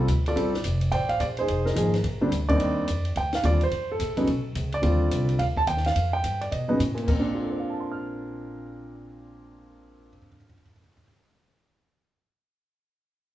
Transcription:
0.08 upright bass D2, kick, hi-hat pedal, ride
0.26 grand piano F4 A4 D5, ride
0.36 upright bass A#1, grand piano G3 C4 F4 A4, kick, ride
0.54 snare
0.64 upright bass F1, kick, hi-hat pedal, ride
0.81 ride
0.92 upright bass A1, grand piano C5 D5 G5, kick, ride
1.09 grand piano F5, ride
1.20 upright bass A#1, grand piano D5, kick, hi-hat pedal, ride
1.37 grand piano D#4 G#4 C5, ride
1.48 upright bass F1, kick, ride
1.66 grand piano D#4 A#4, snare
1.75 upright bass G#1, grand piano F3 A#3 D#4 G#4, kick, hi-hat pedal, ride
1.94 snare, ride
2.04 upright bass A#1, kick, ride
2.21 grand piano D3 G3 C4 D4
2.31 upright bass D2, kick, hi-hat pedal, ride
2.49 grand piano D#2 G3 C4 D4 D#4 D5, kick, ride
2.60 ride
2.88 upright bass F2, kick, hi-hat pedal, ride
3.05 ride
3.16 upright bass D2, grand piano G5, kick, ride
3.33 grand piano F5, snare, ride
3.43 upright bass D#2, grand piano D3 G3 C4 F4 D5, kick, hi-hat pedal, ride
3.61 grand piano C5, ride
3.71 upright bass F2, kick, ride
3.92 grand piano A4
3.99 upright bass A#1, kick, hi-hat pedal, ride
4.17 grand piano C#3 F#3 B3 D#4, ride
4.27 upright bass B1, kick, ride
4.55 upright bass C#2, kick, hi-hat pedal, ride
4.72 grand piano D5, ride
4.82 upright bass D#2, grand piano D3 G3 C4 F4, kick, ride
5.11 upright bass C2, kick, hi-hat pedal, ride
5.29 ride
5.39 upright bass D2, grand piano F5, kick, ride
5.57 grand piano A5, kick
5.67 upright bass D#2, grand piano G5, kick, hi-hat pedal, ride
5.77 snare
5.84 grand piano F5, snare, ride
5.95 upright bass F2, kick, ride
6.13 grand piano G5
6.24 upright bass G2, kick, hi-hat pedal, ride
6.41 grand piano D5, ride
6.52 upright bass B2, grand piano D#5, kick, ride
6.68 grand piano C#3 F#3 B3 D#4
6.79 upright bass A2, kick, hi-hat pedal, ride
6.95 grand piano A#2, ride
7.03 grand piano A#3
7.08 upright bass A#1, grand piano A#4, kick, crash
7.12 grand piano C4
7.20 grand piano D4
7.35 grand piano F4
7.42 grand piano A4
7.50 grand piano C5
7.60 grand piano F5
7.70 grand piano A5
7.80 grand piano C6
7.92 grand piano F6

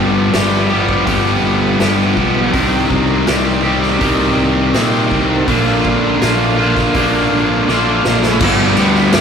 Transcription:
Already playing: fingered electric bass G1, overdriven electric guitar G2 D3 F3 G3 B3 G4
0.32 fingered electric bass G1, overdriven electric guitar F3 G3 B3 G4, snare, open hi-hat
0.70 overdriven electric guitar F3 G3 B3 G4
0.89 kick
1.05 fingered electric bass G1, overdriven electric guitar G2 D3 F3 G3 B3 G4, kick, open hi-hat
1.43 fingered electric bass G1
1.79 fingered electric bass G1, overdriven electric guitar F3 G3 B3 G4, snare, open hi-hat
2.17 fingered electric bass B1, kick
2.52 fingered electric bass C2, overdriven electric guitar C3 D#3 G3 C4 G4, kick, open hi-hat
2.90 fingered electric bass C2, kick
3.27 fingered electric bass C2, overdriven electric guitar D#3 G3 C4 G4, snare, open hi-hat
3.63 overdriven electric guitar G3 C4 G4
3.83 snare
4.00 fingered electric bass C2, overdriven electric guitar C3 D#3 G3 C4 G4, kick, open hi-hat
4.36 fingered electric bass C2
4.73 fingered electric bass A#2, overdriven electric guitar D#3 G3 C4 G4, snare, open hi-hat
5.11 fingered electric bass C2, kick
5.47 fingered electric bass A#1, overdriven electric guitar A#2 D3 A#3 D4 F4, kick, open hi-hat
5.85 kick
6.21 fingered electric bass A#1, overdriven electric guitar D3 A#3 D4 F4, snare, open hi-hat
6.58 overdriven electric guitar A#3 D4 F4
6.77 kick, snare
6.94 fingered electric bass A#1, overdriven electric guitar A#2 D3 A#3 D4 F4, kick, open hi-hat
7.32 fingered electric bass A#1
7.68 fingered electric bass A#1, overdriven electric guitar D3 A#3 D4 F4, snare
8.05 fingered electric bass A#1, snare
8.23 snare
8.40 fingered electric bass G1, overdriven electric guitar G2 D3 F3 G3 B3 G4, kick, crash
8.77 fingered electric bass D2, overdriven electric guitar F3 G3 B3 G4, ride
8.95 snare
9.13 fingered electric bass G2, overdriven electric guitar F3 G3 B3 G4, snare, ride

